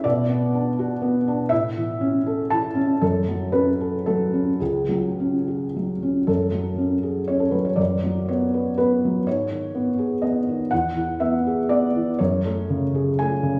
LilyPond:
<<
  \new Staff \with { instrumentName = "Felt piano" } { \time 3/4 \key fis \minor \tempo 4 = 121 d''2. | e''2 a''8 r8 | a'4 b'4 a'4 | gis'2 r4 |
a'2 cis''16 a'16 b'16 cis''16 | d''4 cis''4 b'4 | cis''2 dis''4 | fis''4 e''4 d''4 |
cis''2 gis''4 | }
  \new Staff \with { instrumentName = "Felt piano" } { \time 3/4 \key fis \minor b,8 b8 d'8 fis'8 b8 d'8 | a,8 e8 cis'8 a'8 e8 cis'8 | fis,8 fis8 cis'8 a'8 fis8 cis'8 | cis,8 fis8 cis'8 fis'8 fis8 cis'8 |
fis,8 fis8 cis'8 gis'8 cis'8 fis8 | fis,8 fis8 b8 b'8 b8 fis8 | gis,8 dis8 b8 gis'8 b8 dis8 | e,8 e8 b8 gis'8 b8 e8 |
fis,8 a8 cis8 gis'8 a8 cis8 | }
>>